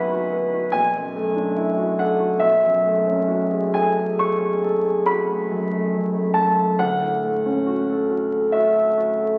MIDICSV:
0, 0, Header, 1, 2, 480
1, 0, Start_track
1, 0, Tempo, 841515
1, 1382, Time_signature, 5, 2, 24, 8
1, 1382, Tempo, 868307
1, 1862, Tempo, 924499
1, 2342, Tempo, 859599
1, 3782, Tempo, 877193
1, 5198, End_track
2, 0, Start_track
2, 0, Title_t, "Grand piano"
2, 0, Program_c, 0, 0
2, 0, Control_c, 0, 64, 127
2, 0, Note_on_c, 0, 35, 55
2, 0, Note_on_c, 0, 42, 39
2, 0, Note_on_c, 0, 59, 42
2, 0, Note_on_c, 0, 61, 42
2, 0, Note_on_c, 0, 63, 45
2, 0, Note_on_c, 0, 66, 49
2, 0, Note_on_c, 0, 71, 49
2, 0, Note_on_c, 0, 75, 88
2, 0, Note_on_c, 0, 76, 80
2, 0, Note_on_c, 0, 78, 84
2, 0, Note_on_c, 0, 80, 81
2, 0, Note_on_c, 0, 83, 84
2, 62, Note_off_c, 0, 66, 0
2, 62, Note_on_c, 0, 66, 46
2, 137, Note_off_c, 0, 71, 0
2, 184, Note_on_c, 0, 71, 46
2, 257, Note_off_c, 0, 66, 0
2, 306, Note_on_c, 0, 66, 43
2, 375, Note_off_c, 0, 71, 0
2, 405, Note_off_c, 0, 35, 0
2, 410, Note_off_c, 0, 80, 0
2, 410, Note_on_c, 0, 80, 96
2, 417, Note_on_c, 0, 35, 57
2, 420, Note_off_c, 0, 83, 0
2, 424, Note_off_c, 0, 66, 0
2, 434, Control_c, 0, 64, 0
2, 435, Note_off_c, 0, 61, 0
2, 435, Note_off_c, 0, 75, 0
2, 436, Note_off_c, 0, 76, 0
2, 436, Note_off_c, 0, 78, 0
2, 437, Note_off_c, 0, 42, 0
2, 437, Note_off_c, 0, 59, 0
2, 437, Note_off_c, 0, 63, 0
2, 512, Control_c, 0, 64, 127
2, 540, Note_on_c, 0, 42, 43
2, 662, Note_on_c, 0, 57, 48
2, 731, Note_off_c, 0, 42, 0
2, 774, Note_on_c, 0, 62, 48
2, 852, Note_off_c, 0, 57, 0
2, 893, Note_on_c, 0, 64, 51
2, 968, Note_off_c, 0, 62, 0
2, 1010, Note_on_c, 0, 66, 45
2, 1088, Note_off_c, 0, 64, 0
2, 1132, Note_off_c, 0, 80, 0
2, 1136, Note_on_c, 0, 78, 67
2, 1141, Note_on_c, 0, 69, 48
2, 1206, Note_off_c, 0, 66, 0
2, 1252, Note_on_c, 0, 66, 48
2, 1334, Note_off_c, 0, 69, 0
2, 1356, Note_off_c, 0, 35, 0
2, 1366, Note_on_c, 0, 76, 93
2, 1372, Note_on_c, 0, 35, 54
2, 1379, Note_off_c, 0, 66, 0
2, 1381, Note_off_c, 0, 78, 0
2, 1392, Control_c, 0, 64, 0
2, 1475, Control_c, 0, 64, 127
2, 1501, Note_on_c, 0, 42, 41
2, 1620, Note_on_c, 0, 57, 43
2, 1694, Note_off_c, 0, 42, 0
2, 1738, Note_on_c, 0, 61, 45
2, 1813, Note_off_c, 0, 57, 0
2, 1857, Note_on_c, 0, 66, 44
2, 1929, Note_off_c, 0, 61, 0
2, 1974, Note_on_c, 0, 68, 47
2, 2048, Note_off_c, 0, 66, 0
2, 2092, Note_off_c, 0, 76, 0
2, 2094, Note_on_c, 0, 80, 83
2, 2096, Note_on_c, 0, 69, 44
2, 2173, Note_off_c, 0, 68, 0
2, 2226, Note_on_c, 0, 68, 45
2, 2293, Note_off_c, 0, 69, 0
2, 2330, Note_on_c, 0, 85, 90
2, 2335, Note_on_c, 0, 69, 48
2, 2339, Note_off_c, 0, 80, 0
2, 2417, Note_off_c, 0, 68, 0
2, 2461, Note_on_c, 0, 68, 44
2, 2532, Note_off_c, 0, 69, 0
2, 2577, Note_on_c, 0, 69, 48
2, 2652, Note_off_c, 0, 68, 0
2, 2696, Note_on_c, 0, 68, 46
2, 2770, Note_off_c, 0, 69, 0
2, 2815, Note_off_c, 0, 85, 0
2, 2815, Note_on_c, 0, 83, 86
2, 2818, Note_on_c, 0, 66, 48
2, 2892, Note_off_c, 0, 68, 0
2, 2945, Note_on_c, 0, 57, 42
2, 3015, Note_off_c, 0, 66, 0
2, 3066, Note_on_c, 0, 42, 44
2, 3139, Note_off_c, 0, 57, 0
2, 3187, Note_on_c, 0, 57, 44
2, 3258, Note_off_c, 0, 42, 0
2, 3307, Note_on_c, 0, 42, 43
2, 3377, Note_off_c, 0, 57, 0
2, 3415, Note_on_c, 0, 57, 42
2, 3496, Note_off_c, 0, 42, 0
2, 3527, Note_on_c, 0, 81, 78
2, 3536, Note_on_c, 0, 42, 38
2, 3539, Note_off_c, 0, 83, 0
2, 3609, Note_off_c, 0, 57, 0
2, 3662, Note_on_c, 0, 57, 39
2, 3730, Note_off_c, 0, 42, 0
2, 3754, Note_off_c, 0, 35, 0
2, 3773, Note_off_c, 0, 81, 0
2, 3779, Note_on_c, 0, 78, 88
2, 3781, Note_on_c, 0, 38, 53
2, 3782, Note_off_c, 0, 57, 0
2, 3790, Control_c, 0, 64, 0
2, 3882, Control_c, 0, 64, 127
2, 3901, Note_on_c, 0, 45, 37
2, 4023, Note_on_c, 0, 57, 42
2, 4091, Note_off_c, 0, 45, 0
2, 4145, Note_on_c, 0, 61, 45
2, 4213, Note_off_c, 0, 57, 0
2, 4259, Note_on_c, 0, 66, 43
2, 4333, Note_off_c, 0, 61, 0
2, 4382, Note_on_c, 0, 69, 42
2, 4449, Note_off_c, 0, 66, 0
2, 4500, Note_on_c, 0, 66, 43
2, 4569, Note_off_c, 0, 69, 0
2, 4620, Note_on_c, 0, 69, 40
2, 4687, Note_off_c, 0, 66, 0
2, 4727, Note_on_c, 0, 76, 75
2, 4732, Note_off_c, 0, 78, 0
2, 4733, Note_on_c, 0, 66, 44
2, 4806, Note_off_c, 0, 69, 0
2, 4854, Note_on_c, 0, 69, 39
2, 4925, Note_off_c, 0, 66, 0
2, 4975, Note_on_c, 0, 66, 41
2, 5049, Note_off_c, 0, 69, 0
2, 5099, Note_on_c, 0, 69, 39
2, 5173, Note_off_c, 0, 66, 0
2, 5198, Note_off_c, 0, 38, 0
2, 5198, Note_off_c, 0, 69, 0
2, 5198, Note_off_c, 0, 76, 0
2, 5198, End_track
0, 0, End_of_file